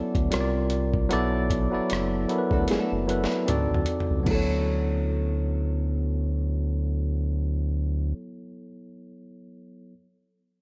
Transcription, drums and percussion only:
0.15 kick medium
0.15 closed hi-hat soft
0.32 cross-stick loud
0.32 closed hi-hat medium
0.70 closed hi-hat medium
0.94 kick medium
1.11 closed hi-hat medium
1.50 kick medium
1.50 closed hi-hat medium
1.90 cross-stick medium
1.90 closed hi-hat medium
2.29 closed hi-hat medium
2.51 kick medium
2.68 snare soft
2.68 closed hi-hat medium
3.09 closed hi-hat medium
3.24 snare medium
3.32 closed hi-hat soft
3.48 closed hi-hat medium
3.48 mid tom medium
3.74 floor tom medium
3.86 closed hi-hat medium
4.00 floor tom medium
4.26 kick medium
4.26 crash medium

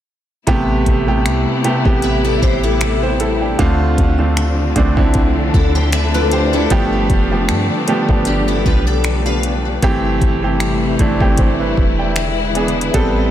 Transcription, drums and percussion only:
0.47 kick loud
0.47 closed hi-hat medium
0.86 kick medium
0.86 closed hi-hat medium
1.26 finger snap medium
1.26 closed hi-hat medium
1.64 closed hi-hat medium
1.85 kick medium
2.02 closed hi-hat medium
2.42 kick medium
2.81 finger snap loud
2.81 closed hi-hat medium
3.20 closed hi-hat medium
3.59 kick loud
3.59 closed hi-hat medium
3.98 kick medium
3.98 closed hi-hat medium
4.37 finger snap medium
4.37 closed hi-hat medium
4.76 kick medium
4.76 closed hi-hat medium
4.97 kick medium
5.14 kick medium
5.14 closed hi-hat medium
5.54 kick medium
5.92 finger snap loud
5.92 closed hi-hat medium
6.32 closed hi-hat medium
6.70 kick loud
6.70 closed hi-hat medium
7.10 kick medium
7.10 closed hi-hat medium
7.49 finger snap medium
7.49 closed hi-hat medium
7.88 closed hi-hat medium
8.09 kick medium
8.25 closed hi-hat medium
8.66 kick medium
9.04 finger snap loud
9.04 closed hi-hat medium
9.43 closed hi-hat medium
9.82 kick loud
9.82 closed hi-hat medium
10.21 kick medium
10.21 closed hi-hat medium
10.60 finger snap medium
10.60 closed hi-hat medium
10.99 kick medium
10.99 closed hi-hat medium
11.21 kick medium
11.37 kick loud
11.37 closed hi-hat medium
11.77 kick medium
12.16 finger snap loud
12.16 closed hi-hat medium
12.55 closed hi-hat medium
12.68 closed hi-hat soft
12.81 closed hi-hat medium
12.94 kick loud
12.94 closed hi-hat medium

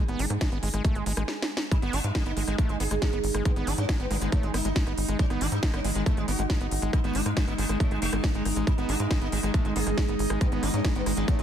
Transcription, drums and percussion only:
0.08 closed hi-hat soft
0.19 open hi-hat loud
0.30 cross-stick soft
0.30 closed hi-hat medium
0.41 kick loud
0.41 snare loud
0.41 closed hi-hat medium
0.52 closed hi-hat soft
0.63 open hi-hat loud
0.74 cross-stick soft
0.74 closed hi-hat medium
0.84 kick loud
0.84 closed hi-hat medium
0.95 closed hi-hat soft
1.06 open hi-hat loud
1.17 cross-stick medium
1.17 closed hi-hat medium
1.28 snare medium
1.42 snare medium
1.57 snare loud
1.71 kick loud
1.71 cross-stick soft
1.71 closed hi-hat medium
1.82 closed hi-hat soft
1.93 open hi-hat loud
2.04 closed hi-hat medium
2.15 kick loud
2.15 cross-stick medium
2.15 snare loud
2.15 closed hi-hat medium
2.26 closed hi-hat soft
2.37 open hi-hat loud
2.48 cross-stick soft
2.48 closed hi-hat medium
2.58 kick loud
2.58 closed hi-hat medium
2.69 closed hi-hat soft
2.80 open hi-hat loud
2.91 cross-stick soft
2.91 closed hi-hat medium
3.02 kick loud
3.02 snare loud
3.02 closed hi-hat medium
3.13 closed hi-hat soft
3.24 open hi-hat loud
3.35 cross-stick medium
3.35 closed hi-hat medium
3.45 kick loud
3.45 closed hi-hat medium
3.56 closed hi-hat soft
3.67 cross-stick soft
3.67 open hi-hat loud
3.78 closed hi-hat medium
3.89 kick loud
3.89 snare loud
3.89 closed hi-hat medium
4.00 closed hi-hat soft
4.11 cross-stick soft
4.11 open hi-hat loud
4.21 closed hi-hat medium
4.32 kick loud
4.32 closed hi-hat medium
4.43 closed hi-hat soft
4.54 cross-stick medium
4.54 open hi-hat loud
4.65 closed hi-hat medium
4.76 kick loud
4.76 snare loud
4.76 closed hi-hat medium
4.87 cross-stick soft
4.87 closed hi-hat soft
4.98 open hi-hat loud
5.08 closed hi-hat medium
5.19 kick loud
5.19 closed hi-hat medium
5.30 cross-stick soft
5.30 closed hi-hat soft
5.41 open hi-hat loud
5.52 closed hi-hat medium
5.63 kick loud
5.63 snare loud
5.63 closed hi-hat medium
5.74 cross-stick medium
5.74 closed hi-hat soft
5.84 open hi-hat loud
5.95 closed hi-hat medium
6.06 kick loud
6.06 cross-stick soft
6.06 closed hi-hat medium
6.17 closed hi-hat soft
6.28 open hi-hat loud
6.39 closed hi-hat medium
6.50 kick loud
6.50 cross-stick soft
6.50 snare loud
6.50 closed hi-hat medium
6.61 closed hi-hat soft
6.71 open hi-hat loud
6.82 closed hi-hat medium
6.93 kick loud
6.93 cross-stick medium
6.93 closed hi-hat soft
7.04 closed hi-hat soft
7.15 open hi-hat loud
7.26 cross-stick soft
7.26 closed hi-hat medium
7.37 kick loud
7.37 snare loud
7.37 closed hi-hat medium
7.48 closed hi-hat soft
7.58 open hi-hat loud
7.69 cross-stick soft
7.69 closed hi-hat medium
7.80 kick loud
7.80 closed hi-hat medium
7.91 closed hi-hat soft
8.02 open hi-hat loud
8.13 cross-stick medium
8.13 closed hi-hat medium
8.24 kick loud
8.24 snare loud
8.24 closed hi-hat medium
8.35 closed hi-hat soft
8.45 cross-stick soft
8.45 open hi-hat loud
8.56 closed hi-hat medium
8.67 kick loud
8.67 cross-stick soft
8.67 closed hi-hat medium
8.78 closed hi-hat soft
8.89 open hi-hat loud
9.00 closed hi-hat medium
9.11 kick loud
9.11 cross-stick medium
9.11 snare loud
9.11 closed hi-hat medium
9.21 closed hi-hat soft
9.32 open hi-hat loud
9.43 cross-stick soft
9.43 closed hi-hat medium
9.54 kick loud
9.54 closed hi-hat medium
9.65 closed hi-hat soft
9.76 open hi-hat loud
9.87 cross-stick soft
9.87 closed hi-hat medium
9.98 kick loud
9.98 snare loud
9.98 closed hi-hat soft
10.08 closed hi-hat soft
10.19 open hi-hat loud
10.30 cross-stick medium
10.41 kick loud
10.41 closed hi-hat medium
10.52 closed hi-hat soft
10.63 cross-stick soft
10.63 open hi-hat loud
10.74 closed hi-hat medium
10.85 kick loud
10.85 snare loud
10.85 closed hi-hat medium
10.95 closed hi-hat soft
11.06 cross-stick soft
11.06 open hi-hat loud
11.17 closed hi-hat medium
11.28 kick loud
11.28 closed hi-hat medium
11.39 closed hi-hat soft

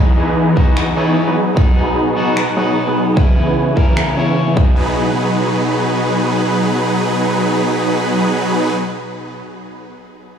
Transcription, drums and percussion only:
0.57 kick medium
0.77 finger snap medium
1.57 kick loud
2.37 finger snap medium
3.17 kick loud
3.77 kick medium
3.97 finger snap medium
4.57 kick loud

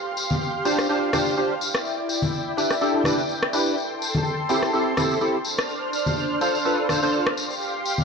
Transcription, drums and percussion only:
0.17 tambourine medium
0.30 tambourine medium
0.30 high conga medium
0.41 tambourine soft
0.65 tambourine medium
0.79 cross-stick medium
0.79 tambourine soft
0.90 tambourine soft
1.13 cross-stick medium
1.13 tambourine medium
1.13 high conga medium
1.26 tambourine soft
1.37 tambourine soft
1.61 tambourine medium
1.74 cross-stick medium
1.74 tambourine soft
1.85 tambourine soft
2.09 tambourine medium
2.22 tambourine medium
2.22 high conga medium
2.33 tambourine soft
2.58 tambourine medium
2.70 cross-stick medium
2.70 tambourine soft
2.81 tambourine soft
3.04 cross-stick medium
3.04 tambourine medium
3.04 high conga medium
3.18 tambourine soft
3.29 tambourine soft
3.43 cross-stick medium
3.53 tambourine medium
3.66 tambourine soft
3.78 tambourine soft
4.02 tambourine medium
4.15 tambourine soft
4.15 high conga medium
4.25 tambourine soft
4.49 tambourine medium
4.63 cross-stick medium
4.63 tambourine soft
4.73 tambourine soft
4.97 cross-stick medium
4.97 tambourine medium
4.97 high conga medium
5.11 tambourine soft
5.21 tambourine soft
5.45 tambourine medium
5.58 cross-stick medium
5.58 tambourine soft
5.69 tambourine soft
5.93 tambourine medium
6.06 tambourine soft
6.06 high conga medium
6.16 tambourine soft
6.41 tambourine medium
6.55 tambourine soft
6.65 tambourine soft
6.89 cross-stick medium
6.89 tambourine medium
6.89 high conga medium
7.03 tambourine soft
7.13 tambourine soft
7.27 cross-stick medium
7.37 tambourine medium
7.51 tambourine soft
7.61 tambourine soft
7.85 tambourine medium
7.98 tambourine soft
7.98 high conga medium

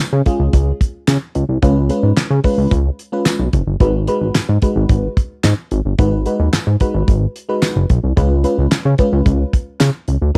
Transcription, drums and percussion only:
0.00 clap loud
0.26 kick medium
0.26 closed hi-hat medium
0.53 kick loud
0.53 closed hi-hat medium
0.81 kick medium
0.81 closed hi-hat medium
1.07 snare loud
1.07 clap medium
1.07 closed hi-hat loud
1.07 tambourine medium
1.35 closed hi-hat medium
1.62 kick loud
1.62 closed hi-hat medium
1.89 closed hi-hat medium
2.17 snare loud
2.17 clap medium
2.17 closed hi-hat medium
2.17 tambourine medium
2.44 kick medium
2.44 open hi-hat medium
2.71 kick loud
2.71 closed hi-hat medium
2.99 closed hi-hat medium
3.25 snare loud
3.25 clap medium
3.25 closed hi-hat loud
3.25 tambourine medium
3.53 kick medium
3.53 closed hi-hat medium
3.80 kick loud
3.80 closed hi-hat medium
4.08 closed hi-hat medium
4.35 snare loud
4.35 clap medium
4.35 closed hi-hat medium
4.35 tambourine medium
4.62 kick medium
4.62 closed hi-hat medium
4.89 kick loud
4.89 closed hi-hat medium
5.17 kick medium
5.17 closed hi-hat medium
5.44 snare loud
5.44 clap medium
5.44 closed hi-hat loud
5.44 tambourine medium
5.71 closed hi-hat medium
5.99 kick loud
5.99 closed hi-hat medium
6.26 closed hi-hat medium
6.53 snare loud
6.53 clap loud
6.53 closed hi-hat medium
6.53 tambourine medium
6.80 kick medium
6.80 closed hi-hat medium
7.08 kick loud
7.08 closed hi-hat medium
7.36 closed hi-hat medium
7.62 snare loud
7.62 clap medium
7.62 closed hi-hat loud
7.62 tambourine medium
7.89 kick medium
7.89 closed hi-hat medium
8.17 kick loud
8.17 closed hi-hat medium
8.44 closed hi-hat medium
8.71 snare loud
8.71 clap medium
8.71 closed hi-hat medium
8.71 tambourine medium
8.98 kick medium
8.98 closed hi-hat medium
9.26 kick loud
9.26 closed hi-hat medium
9.53 kick medium
9.53 closed hi-hat medium
9.80 snare loud
9.80 clap medium
9.80 closed hi-hat loud
9.80 tambourine medium
10.08 closed hi-hat medium

